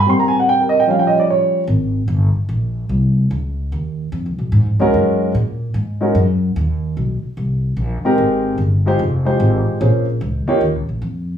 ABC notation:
X:1
M:4/4
L:1/16
Q:"Swing" 1/4=148
K:Ab
V:1 name="Grand piano"
c' b a _g =g B e g f g e =d _d3 z | z16 | z12 z2 [A,DE_GB]2- | [A,DE_GB]4 z6 [A,DEGB]2 z4 |
z12 z2 [A,CEGB]2- | [A,CEGB]4 z2 [A,EFGc]2 z2 [A,EFGc]6 | [B,DFAc]2 z4 [B,EFGd]2 z8 |]
V:2 name="Grand piano" clef=bass
[G,B,C]8 [F,G,D]8 | z16 | z16 | z16 |
z16 | z16 | z16 |]
V:3 name="Upright bass" clef=bass
z16 | A,,,4 G,,,2 z2 B,,,4 C,,4 | D,,4 E,,4 (3F,,2 D,,2 _C,,2 (3A,,2 F,,2 D,,2 | _G,,4 B,,4 A,,4 G,,4 |
E,,4 _C,,2 z2 =C,,4 B,,,2 z2 | A,,,4 G,,,4 F,,,4 A,,,2 z2 | B,,,4 D,,2 z2 (3E,,2 D,,2 B,,,2 F,,4 |]